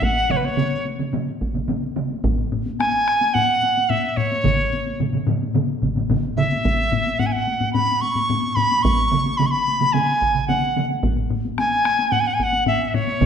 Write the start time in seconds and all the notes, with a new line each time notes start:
0.02 F#5, taiko, taiko high
0.30 C#5, taiko mid, taiko high
0.36 B4
0.44 C#5, taiko high
0.57 taiko mid, taiko high
0.85 taiko high
0.99 taiko mid, taiko high
1.13 taiko mid, taiko high
1.41 taiko, taiko high
1.54 taiko mid, taiko high
1.68 taiko mid, taiko high
1.96 taiko mid, taiko high
2.10 taiko high
2.24 taiko, taiko low-mid, taiko high
2.38 taiko low-mid
2.52 taiko low-mid, taiko high
2.66 taiko high
2.79 G#5, taiko rim, taiko high
3.08 taiko rim
3.21 taiko high
3.34 F#5, taiko low-mid, taiko high
3.63 taiko high
3.77 taiko high
3.89 E5, taiko low-mid, taiko high
4.17 C#5, taiko low-mid, taiko high
4.32 taiko high
4.44 taiko, taiko low-mid, taiko mid, taiko high
4.73 taiko high
4.87 taiko high
5.00 taiko low-mid, taiko mid, taiko high
5.13 taiko low-mid, taiko mid
5.27 taiko low-mid, taiko mid, taiko high
5.43 taiko high
5.54 taiko low-mid, taiko mid, taiko high
5.82 taiko, taiko low-mid, taiko mid, taiko high
5.96 taiko low-mid, taiko mid, taiko high
6.10 taiko, taiko low-mid, taiko mid, taiko high
6.37 E5, taiko low-mid, taiko mid, taiko high
6.52 taiko high
6.65 taiko, taiko high
6.92 taiko low-mid, taiko high
7.07 taiko high
7.19 F#5, taiko low-mid, taiko high
7.26 G#5
7.32 F#5
7.47 taiko high
7.61 taiko low-mid, taiko high
7.73 B5, taiko low-mid, taiko high
8.01 C#6, taiko high
8.15 taiko low-mid, taiko high
8.30 taiko low-mid, taiko high
8.55 B5, taiko low-mid, taiko high
8.71 taiko high
8.82 C#6, taiko, taiko high
9.12 taiko mid, taiko high
9.26 taiko high
9.37 B5, taiko mid, taiko high
9.46 C#6
9.51 B5
9.68 taiko high
9.80 taiko mid, taiko high
9.93 G#5, taiko mid, taiko high
10.22 taiko
10.35 taiko mid
10.48 F#5, taiko mid, taiko high
10.76 taiko mid, taiko high
10.90 taiko high
11.03 taiko, taiko low-mid, taiko high
11.16 taiko low-mid
11.30 taiko low-mid, taiko high
11.45 taiko high
11.58 G#5, taiko rim, taiko high
11.85 taiko rim, taiko high
11.99 taiko high
12.12 F#5, taiko low-mid, taiko high
12.20 G#5
12.27 F#5
12.34 G#5
12.39 F#5, taiko, taiko high
12.53 taiko high
12.66 E5, taiko low-mid, taiko high
12.87 E5
12.94 C#5, taiko low-mid, taiko high
13.07 taiko high
13.21 taiko, taiko low-mid, taiko mid, taiko high